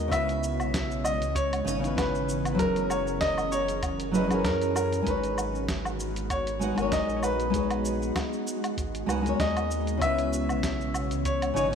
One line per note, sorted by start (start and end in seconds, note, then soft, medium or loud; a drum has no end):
0.00 0.13 D#2 medium
0.00 2.54 G#3 medium
0.00 0.10 C#5 loud
0.00 0.13 D#5 loud
0.08 0.61 C#2 medium
0.08 1.61 C#3 loud
0.08 2.56 C#3 medium
0.08 5.02 E3 medium
0.08 2.56 B3 medium
0.08 1.63 B3 medium
0.08 1.62 C#4 medium
0.08 2.56 C#5 medium
0.08 1.07 E5 loud
0.08 kick loud
0.12 1.64 E4 medium
0.12 1.65 B4 loud
0.12 closed hi-hat medium
0.12 cabasa soft
0.12 low woodblock medium
0.29 closed hi-hat soft
0.29 cabasa soft
0.43 cabasa medium
0.59 1.23 B1 medium
0.59 cabasa soft
0.59 low woodblock medium
0.73 kick loud
0.73 snare loud
0.73 closed hi-hat medium
0.73 cabasa soft
0.91 cabasa soft
1.04 1.33 D#5 loud
1.04 cabasa medium
1.04 low woodblock medium
1.21 1.62 C#2 medium
1.21 closed hi-hat soft
1.21 cabasa soft
1.35 1.99 C#5 loud
1.35 kick loud
1.35 closed hi-hat medium
1.35 cabasa soft
1.53 closed hi-hat soft
1.53 cabasa soft
1.53 low woodblock medium
1.65 2.60 G#1 loud
1.65 1.78 C#3 loud
1.65 1.79 C#4 medium
1.65 1.79 D#4 medium
1.65 1.80 D#5 loud
1.65 cabasa medium
1.79 2.54 C#3 loud
1.79 2.55 C#4 medium
1.79 2.56 D#4 medium
1.84 2.57 E4 medium
1.84 2.57 B4 loud
1.84 closed hi-hat soft
1.84 cabasa soft
1.97 2.51 B4 medium
1.97 kick loud
1.97 snare loud
1.97 closed hi-hat medium
1.97 cabasa soft
1.97 low woodblock medium
2.15 cabasa soft
2.29 cabasa medium
2.45 closed hi-hat soft
2.45 cabasa soft
2.45 low woodblock medium
2.53 4.08 F#3 loud
2.53 2.59 B4 medium
2.57 4.30 F#1 medium
2.57 5.04 F#3 medium
2.57 4.09 C#4 medium
2.57 5.04 C#4 medium
2.57 4.10 E4 medium
2.57 5.04 G#4 medium
2.57 4.11 G#4 medium
2.57 2.91 A#4 loud
2.57 5.04 A#4 medium
2.57 kick loud
2.57 closed hi-hat medium
2.57 cabasa soft
2.63 4.12 A#4 loud
2.76 closed hi-hat soft
2.76 cabasa soft
2.90 3.19 C#5 medium
2.90 cabasa medium
2.90 low woodblock medium
3.07 cabasa soft
3.21 3.53 D#5 loud
3.21 kick loud
3.21 snare medium
3.21 closed hi-hat medium
3.21 cabasa soft
3.38 cabasa soft
3.38 low woodblock medium
3.52 4.16 C#5 loud
3.52 cabasa medium
3.68 closed hi-hat soft
3.68 cabasa soft
3.82 kick loud
3.82 closed hi-hat medium
3.82 cabasa soft
3.82 low woodblock medium
4.00 closed hi-hat soft
4.00 cabasa soft
4.11 4.25 F#3 loud
4.11 4.26 C#4 medium
4.11 4.26 E4 medium
4.11 4.27 G#4 medium
4.11 4.36 B4 medium
4.11 4.27 D#5 loud
4.11 cabasa medium
4.26 4.46 F#1 medium
4.26 5.01 F#3 medium
4.26 5.02 C#4 medium
4.26 5.03 E4 medium
4.31 5.04 G#4 medium
4.31 5.05 A#4 loud
4.31 closed hi-hat soft
4.31 cabasa soft
4.31 low woodblock medium
4.38 4.44 B4 medium
4.44 5.02 F#2 medium
4.44 4.74 A#4 medium
4.44 kick loud
4.44 snare loud
4.44 closed hi-hat medium
4.44 cabasa soft
4.62 closed hi-hat soft
4.62 cabasa soft
4.76 5.07 A#4 medium
4.76 cabasa medium
4.76 low woodblock medium
4.92 closed hi-hat soft
4.92 cabasa soft
5.02 6.73 G#1 loud
5.02 6.56 G#3 medium
5.02 11.75 G#3 medium
5.02 11.75 B3 medium
5.02 6.56 D#4 medium
5.02 6.57 F#4 medium
5.02 9.97 F#4 medium
5.02 kick loud
5.07 6.34 B4 medium
5.07 6.59 B4 medium
5.07 6.59 C#5 loud
5.07 closed hi-hat medium
5.07 cabasa soft
5.24 closed hi-hat soft
5.24 cabasa soft
5.38 cabasa medium
5.38 low woodblock medium
5.55 cabasa soft
5.68 kick loud
5.68 snare loud
5.68 closed hi-hat medium
5.68 cabasa soft
5.85 cabasa soft
5.85 low woodblock medium
6.00 cabasa medium
6.16 closed hi-hat soft
6.16 cabasa soft
6.30 6.94 C#5 loud
6.30 kick loud
6.30 closed hi-hat medium
6.30 cabasa soft
6.30 low woodblock medium
6.47 closed hi-hat soft
6.47 cabasa soft
6.59 6.73 G#3 medium
6.59 6.73 D#4 medium
6.59 6.74 F#4 medium
6.59 6.74 B4 medium
6.59 6.75 F#5 loud
6.59 cabasa medium
6.74 7.03 G#1 medium
6.74 7.49 G#3 medium
6.74 7.49 D#4 medium
6.74 7.50 F#4 medium
6.74 closed hi-hat soft
6.74 cabasa soft
6.74 low woodblock medium
6.79 7.51 A#4 medium
6.79 7.53 C#5 loud
6.92 7.18 D#5 medium
6.92 kick loud
6.92 snare medium
6.92 closed hi-hat medium
6.92 cabasa soft
7.09 8.11 A#1 medium
7.09 cabasa soft
7.16 7.23 C#5 medium
7.23 8.12 B4 loud
7.23 cabasa medium
7.23 low woodblock medium
7.40 closed hi-hat soft
7.40 cabasa soft
7.50 9.03 G#3 medium
7.50 9.04 D#4 medium
7.50 9.05 F#4 medium
7.50 kick loud
7.50 closed hi-hat medium
7.54 9.05 G#4 medium
7.54 9.07 C#5 loud
7.54 cabasa soft
7.70 closed hi-hat soft
7.70 cabasa soft
7.70 low woodblock medium
7.85 cabasa medium
8.02 cabasa soft
8.15 kick loud
8.15 snare medium
8.15 closed hi-hat medium
8.15 cabasa soft
8.15 low woodblock medium
8.33 cabasa soft
8.47 cabasa medium
8.64 closed hi-hat soft
8.64 cabasa soft
8.64 low woodblock medium
8.77 9.03 G#1 medium
8.77 kick loud
8.77 closed hi-hat medium
8.77 cabasa soft
8.95 closed hi-hat soft
8.95 cabasa soft
9.06 9.34 C#2 loud
9.06 9.20 G#3 loud
9.06 9.20 D#4 loud
9.06 9.21 F#4 medium
9.06 9.22 B4 medium
9.06 9.22 F#5 loud
9.06 cabasa medium
9.06 low woodblock medium
9.21 9.96 G#3 loud
9.21 9.97 D#4 medium
9.21 9.97 F#4 medium
9.26 9.98 A#4 medium
9.26 10.00 C#5 loud
9.26 closed hi-hat soft
9.26 cabasa soft
9.39 10.03 D#2 medium
9.39 9.97 D#5 loud
9.39 kick loud
9.39 snare loud
9.39 closed hi-hat medium
9.39 cabasa soft
9.57 closed hi-hat soft
9.57 cabasa soft
9.57 low woodblock medium
9.71 cabasa medium
9.87 closed hi-hat soft
9.87 cabasa soft
9.97 10.50 C#2 medium
9.97 11.51 C#3 medium
9.97 11.75 C#3 medium
9.97 11.75 E3 medium
9.97 11.52 B3 medium
9.97 11.51 C#4 medium
9.97 11.75 C#5 medium
9.97 kick loud
10.02 11.53 E4 medium
10.02 11.54 B4 loud
10.02 11.29 E5 loud
10.02 closed hi-hat medium
10.02 cabasa soft
10.02 low woodblock medium
10.18 closed hi-hat soft
10.18 cabasa soft
10.33 cabasa medium
10.49 11.13 B1 medium
10.49 cabasa soft
10.49 low woodblock medium
10.63 kick loud
10.63 snare loud
10.63 closed hi-hat medium
10.63 cabasa soft
10.81 cabasa soft
10.94 cabasa medium
10.94 low woodblock medium
11.11 11.52 C#2 medium
11.11 closed hi-hat soft
11.11 cabasa soft
11.25 11.55 C#5 loud
11.25 kick loud
11.25 closed hi-hat medium
11.25 cabasa soft
11.42 closed hi-hat soft
11.42 cabasa soft
11.42 low woodblock medium
11.54 11.75 G#1 loud
11.54 11.68 C#3 loud
11.54 11.68 C#4 medium
11.54 11.69 D#4 loud
11.54 11.75 C#5 loud
11.54 11.69 D#5 loud
11.54 cabasa medium
11.69 11.75 C#3 medium
11.69 11.75 C#4 medium